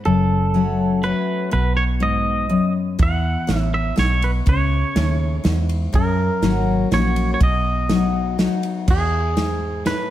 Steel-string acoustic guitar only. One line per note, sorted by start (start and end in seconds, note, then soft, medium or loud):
0.05 0.99 F#2 medium
0.54 1.01 F#3 medium
0.54 1.01 A3 medium
0.54 1.01 C#4 medium
0.54 1.02 F#4 medium
1.03 1.50 F#3 medium
1.03 1.50 A3 medium
1.03 1.50 C#4 medium
1.03 1.51 F#4 medium
1.51 2.45 B2 medium
2.00 2.48 G#2 medium
2.49 2.97 F#2 medium
2.99 3.92 E2 medium
3.47 3.94 A2 medium
3.96 4.43 B2 medium
4.46 5.39 C#3 medium
4.96 5.42 A2 medium
5.44 5.91 G#2 medium
5.93 6.86 F#2 medium
6.42 6.89 F#3 medium
6.42 6.89 A#3 medium
6.42 6.90 C#4 medium
6.42 6.90 F#4 medium
6.91 7.38 F#3 medium
6.91 7.38 A#3 medium
6.91 7.38 C#4 medium
6.91 7.39 F#4 medium
7.41 8.34 B2 medium
7.89 8.36 F#3 medium
7.89 8.36 B3 medium
7.89 8.36 D#4 medium
7.89 8.37 F#4 medium
8.38 8.85 F#3 medium
8.38 8.85 B3 medium
8.38 8.85 D#4 medium
8.38 8.86 F#4 medium
8.88 9.36 E2 medium
9.37 9.83 G#2 medium
9.86 10.10 A2 medium